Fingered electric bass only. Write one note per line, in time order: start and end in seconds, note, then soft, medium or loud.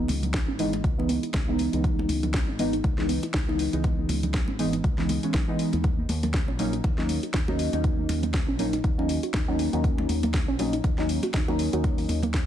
0.09 0.48 C#2 loud
0.48 0.80 G#1 loud
0.84 1.17 C#2 medium
1.34 1.67 C#2 medium
1.73 2.05 C#2 medium
2.09 2.48 C#2 loud
2.48 2.80 G#1 loud
2.84 3.17 C#2 medium
3.34 3.67 C#2 medium
3.73 4.05 C#2 medium
4.09 4.48 C#2 loud
4.48 4.80 G#1 medium
4.84 5.17 C#2 medium
5.34 5.45 B1 medium
5.73 6.05 D#2 medium
6.09 6.48 D#2 loud
6.48 6.80 A#1 loud
6.84 7.17 D#2 medium
7.34 7.67 D#2 medium
7.73 8.05 D#2 medium
8.09 8.48 D#2 loud
8.48 8.80 A#1 loud
8.84 9.17 D#2 medium
9.34 9.67 D#2 medium
9.73 10.05 D#2 medium
10.09 10.48 D#2 loud
10.48 10.80 A#1 loud
10.84 11.17 D#2 medium
11.34 11.67 D#2 medium
11.73 12.05 D#2 medium
12.09 12.46 D#2 loud